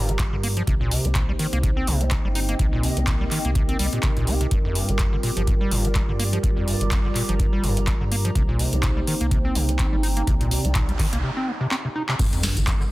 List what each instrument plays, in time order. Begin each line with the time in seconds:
Already playing: analog synth bass G1, acid bass G2, analog synth pad G3 F4 A#4, ambient pad G4 D5 A#5
0.09 acid bass G3, closed hi-hat
0.19 acid bass G2, kick, clap, closed hi-hat
0.33 analog synth bass G2, acid bass D3
0.43 acid bass A#3, open hi-hat
0.57 acid bass F3, closed hi-hat
0.67 analog synth bass C2, acid bass C3, analog synth pad A#3 D#4 C5, ambient pad C4, kick, closed hi-hat
0.81 acid bass A#2
0.91 acid bass C3, open hi-hat
1.05 analog synth bass C2, acid bass C4, closed hi-hat
1.15 acid bass A#2, ambient pad D#5, kick, clap, closed hi-hat
1.29 acid bass G3, ambient pad G4
1.39 acid bass D#3, open hi-hat
1.53 analog synth bass C2, acid bass A#3, closed hi-hat
1.63 acid bass C3, kick, closed hi-hat
1.77 acid bass C4
1.87 analog synth bass C2, acid bass C3, open hi-hat
2.01 acid bass C4, closed hi-hat
2.11 acid bass C3, kick, clap, closed hi-hat
2.25 analog synth bass G1, acid bass G3
2.35 acid bass D#4, open hi-hat
2.49 acid bass A#3, closed hi-hat
2.59 analog synth bass C2, acid bass C3, analog synth pad A#4, kick, closed hi-hat
2.73 acid bass A#2
2.83 acid bass C3, open hi-hat
2.97 analog synth bass C2, acid bass C4, closed hi-hat
3.07 acid bass A#2, kick, clap, closed hi-hat
3.21 acid bass G3
3.31 acid bass D#3, clap, open hi-hat
3.45 analog synth bass C2, acid bass A#3, closed hi-hat
3.55 acid bass C3, kick, closed hi-hat
3.69 acid bass C4, closed hi-hat
3.79 analog synth bass C2, acid bass G3, open hi-hat
3.93 acid bass A#2, closed hi-hat
4.03 acid bass C3, kick, clap, closed hi-hat
4.17 analog synth bass C2, acid bass A#2, closed hi-hat
4.27 acid bass C4, open hi-hat
4.41 acid bass C3, closed hi-hat
4.51 analog synth bass G1, acid bass G2, analog synth pad G3 F4, kick, closed hi-hat
4.65 acid bass F2
4.75 acid bass G2, open hi-hat
4.89 analog synth bass G1, acid bass G3, closed hi-hat
4.99 acid bass F2, kick, clap, closed hi-hat
5.09 acid bass D3, ambient pad D5
5.23 acid bass A#2, open hi-hat
5.37 analog synth bass G1, acid bass F3, closed hi-hat
5.47 acid bass G2, kick, closed hi-hat
5.61 acid bass G3
5.71 analog synth bass G1, acid bass G2, open hi-hat
5.85 acid bass G3, closed hi-hat
5.95 acid bass G3, kick, clap, closed hi-hat
6.09 analog synth bass G2, acid bass D3, ambient pad A#5
6.20 acid bass A#3, open hi-hat
6.33 acid bass F3, closed hi-hat
6.43 analog synth bass G1, acid bass G2, kick, closed hi-hat
6.57 acid bass F2
6.67 acid bass G2, open hi-hat
6.81 analog synth bass G1, acid bass G3, closed hi-hat
6.91 acid bass F2, kick, clap, closed hi-hat
7.05 acid bass D3
7.15 acid bass A#2, clap, open hi-hat
7.29 analog synth bass G1, acid bass F3, closed hi-hat
7.39 acid bass G2, kick, closed hi-hat
7.53 acid bass G3
7.63 analog synth bass G1, acid bass G2, open hi-hat
7.77 acid bass G3, closed hi-hat
7.87 acid bass G3, kick, clap, closed hi-hat
8.01 analog synth bass G2, acid bass D3
8.12 acid bass A#3, open hi-hat
8.25 acid bass F3, closed hi-hat
8.35 analog synth bass C2, acid bass C3, analog synth pad A#3 D#4 C5, ambient pad C4, kick, closed hi-hat
8.49 acid bass A#2
8.59 acid bass C3, open hi-hat
8.73 analog synth bass C2, acid bass C4, closed hi-hat
8.83 acid bass A#2, kick, clap, closed hi-hat
8.89 ambient pad D#4
8.97 acid bass G3
9.07 acid bass D#3, open hi-hat
9.21 analog synth bass C2, acid bass A#3, closed hi-hat
9.31 acid bass C3, kick, closed hi-hat
9.45 acid bass C4
9.55 analog synth bass C2, acid bass C3, open hi-hat
9.69 acid bass C4, closed hi-hat
9.79 acid bass C4, kick, clap, closed hi-hat
9.93 analog synth bass G1, acid bass G3
10.03 acid bass D#4, open hi-hat
10.17 acid bass A#3, closed hi-hat
10.27 analog synth bass C2, acid bass C3, analog synth pad D5, kick, closed hi-hat, noise sweep
10.41 acid bass A#2, closed hi-hat
10.51 acid bass C3, open hi-hat
10.65 analog synth bass C2, acid bass C4, closed hi-hat
10.75 acid bass A#2, kick, clap, closed hi-hat
10.89 acid bass G3, closed hi-hat
10.99 acid bass D#3, kick, clap, open hi-hat
11.13 analog synth bass C2, acid bass A#3, closed hi-hat
11.23 acid bass C3
11.37 acid bass C4
11.47 acid bass A#3
11.61 acid bass C3
11.71 acid bass C4, clap
11.85 acid bass C3
11.95 acid bass D#4
12.09 acid bass C3, clap
12.19 analog synth bass G1, acid bass G2, analog synth pad G3 F4 A#4, kick, closed hi-hat, crash, impact, maracas
12.33 acid bass F2, closed hi-hat, maracas
12.43 acid bass G2, snare, open hi-hat, maracas
12.51 ambient pad D5
12.57 analog synth bass G1, acid bass G3, closed hi-hat, maracas
12.67 acid bass F2, kick, clap, closed hi-hat, maracas
12.81 acid bass D3, maracas